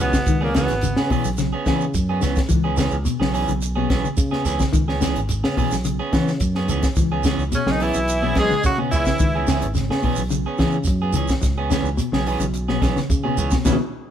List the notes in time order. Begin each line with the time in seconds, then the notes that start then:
0.00 C#2 B2 E3 B3 C#4 G#4, shekere
0.13 C#3, kick, snare, shekere
0.26 C#2 D#3, kick, closed hi-hat, shekere
0.41 A#2 A#3 B3 C#4 G#4
0.52 B2 C#3 E3 B3 C#4 G#4, snare, closed hi-hat, shekere
0.56 B3
0.68 G#1, snare, closed hi-hat, shekere
0.81 C#3, closed hi-hat, shekere
0.96 C#3 B3 C#4 G#4, snare
1.10 B2 E3 B3 C#4 G#4, kick, open hi-hat, shekere
1.25 B1, shekere
1.37 C#3, snare, closed hi-hat, shekere
1.53 B3 C#4 G#4
1.66 C#3 E3 B3 C#4 G#4, kick, snare, closed hi-hat, shekere
1.81 shekere
1.94 F#2, kick, closed hi-hat, shekere
2.09 B3 C#4 G#4
2.21 C#2 C#3 E3 B3 C#4, snare, closed hi-hat, shekere
2.36 kick, snare, closed hi-hat, shekere
2.49 C#2 E3, kick, closed hi-hat, shekere
2.64 B3 C#4 G#4
2.77 C#3 E3 B3 C#4 G#4, snare, closed hi-hat, shekere
2.91 C#2, shekere
3.05 B2, closed hi-hat, shekere
3.20 B1 C#3 B3 C#4 G#4, snare
3.33 E3 B3 C#4 G#4, open hi-hat, shekere
3.48 B1 C#3, closed hi-hat, shekere
3.62 closed hi-hat, shekere
3.76 B2 B3 C#4 G#4
3.89 B1 E3 B3 C#4 G#4, kick, snare, closed hi-hat, shekere
4.04 C#3, shekere
4.17 C#3, kick, closed hi-hat, shekere
4.31 B3 C#4 G#4, muted clean electric guitar stroke, snare
4.45 C#2 E3 B3 C#4 G#4, snare, closed hi-hat, shekere
4.60 C#3, kick, snare, shekere
4.73 C#2 D#3, kick, closed hi-hat, shekere
4.88 B3 C#4 G#4, snare
5.01 C#3 E3 B3 C#4 G#4, snare, closed hi-hat, shekere
5.16 G#1, closed hi-hat, shekere
5.29 muted clean electric guitar stroke, closed hi-hat, shekere
5.44 C#3 B3 C#4 G#4, snare
5.57 B2 E3 B3 C#4 G#4, kick, open hi-hat, shekere
5.72 B1, snare, shekere
5.85 C#3, closed hi-hat, shekere
5.99 B3 C#4 G#4
6.12 C#3 E3 B3 C#4, kick, snare, closed hi-hat, shekere
6.28 snare, shekere
6.40 F#2, kick, closed hi-hat, shekere
6.55 B3 C#4 G#4, snare
6.68 C#2 C#3 E3 B3 C#4 G#4, closed hi-hat, shekere
6.83 kick, snare, closed hi-hat, shekere
6.96 C#2 E3, kick, closed hi-hat, shekere
7.12 B3 C#4 G#4
7.23 C#3 E3 B3 C#4 G#4, snare, closed hi-hat, shekere
7.38 C#2, shekere
7.52 B2 C#3 C#4, closed hi-hat, shekere
7.66 B1 C#3 D#3 B3 C#4 G#4, snare
7.71 D#4
7.80 E3 B3 C#4 E4 G#4, open hi-hat, shekere
7.84 E4
7.94 B1, muted clean electric guitar stroke, closed hi-hat, shekere
8.08 closed hi-hat, shekere
8.22 B2 B3 C#4 G#4
8.35 B1 E3 G#3 B3 C#4 G#4, kick, snare, closed hi-hat, shekere
8.39 G#4
8.51 C#3, shekere
8.64 C#3 F#3 F#4, kick, closed hi-hat, shekere
8.78 B2 B3 C#4 G#4
8.91 C#2 E3 B3 C#4 E4 G#4, closed hi-hat, shekere
9.06 C#3, kick, snare, shekere
9.19 C#2 D#3, kick, closed hi-hat, shekere
9.35 B3 C#4 G#4
9.47 C#3 E3 B3 C#4 G#4, snare, closed hi-hat, shekere
9.61 G#1, closed hi-hat, shekere
9.75 C#3, snare, closed hi-hat, shekere
9.89 C#3 B3 C#4 G#4, snare
10.02 B2 E3 B3 C#4 G#4, kick, open hi-hat, shekere
10.16 B1, shekere
10.30 C#3, closed hi-hat, shekere
10.46 B3 C#4 G#4
10.58 C#3 E3 B3 C#4 G#4, kick, snare, closed hi-hat, shekere
10.72 shekere
10.84 F#2, kick, closed hi-hat, shekere
11.02 B3 G#4
11.13 C#2 C#3 E3 C#4 G#4, closed hi-hat, shekere
11.28 kick, snare, closed hi-hat, shekere
11.42 C#2, muted clean electric guitar stroke, kick, snare, closed hi-hat, shekere
11.58 B3 C#4 G#4
11.70 C#3 E3 B3 C#4 G#4, snare, closed hi-hat, shekere
11.83 C#2, shekere
11.97 B2, closed hi-hat, shekere
12.12 B1 C#3 B3 C#4 G#4, snare
12.26 E3 B3 C#4 G#4, open hi-hat, shekere
12.40 B1 C#3, closed hi-hat, shekere
12.54 closed hi-hat, shekere
12.68 B2 B3 C#4 G#4, snare
12.82 B1 E3 B3 C#4 G#4, kick, snare, closed hi-hat, shekere
12.96 C#3, snare, shekere
13.10 C#3, kick, closed hi-hat, shekere
13.24 B2 B3 C#4 G#4
13.37 C#2 E3 B3 C#4 G#4, closed hi-hat, shekere
13.51 B2, kick, snare, shekere
13.65 C#2 B2 C#3 E3 B3 C#4 E4, kick, snare, shekere